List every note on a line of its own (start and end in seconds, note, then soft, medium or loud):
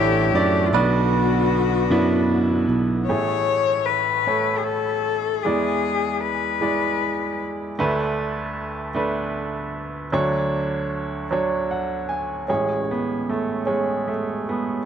0.00 0.30 A1 loud
0.00 0.70 A1 medium
0.00 0.70 A2 medium
0.00 0.71 D3 medium
0.00 0.69 E3 medium
0.00 0.69 A3 medium
0.00 0.76 A3 medium
0.00 0.74 B3 medium
0.00 0.32 C#4 medium
0.00 0.38 D4 medium
0.00 0.76 E4 medium
0.00 0.68 G4 loud
0.00 0.75 A4 medium
0.00 0.76 B4 loud
0.00 0.37 C#5 medium
0.00 0.35 D5 loud
0.00 0.67 E5 medium
0.33 0.71 F#2 medium
0.33 0.71 D5 medium
0.38 0.73 D4 medium
0.66 0.73 F4 medium
0.71 1.87 B1 loud
0.71 3.05 B2 medium
0.71 3.07 D3 medium
0.71 3.06 B3 medium
0.71 1.84 B3 medium
0.71 1.85 D4 medium
0.71 2.68 F#4 loud
0.71 3.41 B4 medium
0.71 2.65 D5 medium
0.75 3.06 B1 medium
0.75 2.66 F#4 medium
1.90 2.65 F#2 medium
1.90 3.01 B3 medium
1.90 3.02 D4 medium
1.90 3.02 E4 medium
2.69 3.06 B1 medium
3.07 5.40 A1 soft
3.07 5.40 A2 soft
3.07 4.19 A3 medium
3.07 4.20 G#4 medium
3.07 3.87 C#5 medium
3.07 4.20 C#5 medium
3.86 4.60 B4 medium
4.27 5.37 A3 medium
4.27 5.37 A4 soft
4.27 5.37 C#5 medium
4.58 4.65 G#4 medium
4.63 5.44 A4 medium
5.43 7.75 E2 soft
5.43 7.75 E3 soft
5.43 6.55 G#3 medium
5.43 6.55 E4 medium
5.43 6.22 G#4 medium
5.43 6.55 D5 medium
6.21 7.39 B4 medium
6.61 7.71 G#3 medium
6.61 7.72 E4 soft
6.61 7.72 D5 medium
7.79 10.10 D2 medium
7.79 10.10 D3 medium
7.79 8.89 A3 medium
7.79 8.89 D4 medium
7.79 8.89 B4 medium
8.94 10.06 A3 medium
8.94 10.06 D4 medium
8.94 10.06 B4 medium
10.12 12.45 D2 medium
10.12 12.45 D3 medium
10.12 11.23 F#3 medium
10.12 11.24 D4 medium
10.12 11.24 C#5 medium
11.31 12.42 F#3 medium
11.31 12.42 D4 medium
11.31 12.43 C#5 medium
11.71 12.07 F#5 medium
12.09 12.46 G#5 medium
12.48 14.81 A1 soft
12.48 14.81 A2 soft
12.48 13.64 G#3 soft
12.48 12.80 C#4 medium
12.48 13.60 G#4 medium
12.48 13.61 C#5 medium
12.81 12.88 C#4 soft
12.91 13.30 B3 medium
13.29 13.69 A3 medium
13.66 14.08 G#3 medium
13.66 14.77 C#4 soft
13.66 14.78 G#4 soft
13.66 14.78 C#5 medium
14.08 14.44 A3 medium
14.49 14.85 G#3 soft
14.49 14.85 B3 medium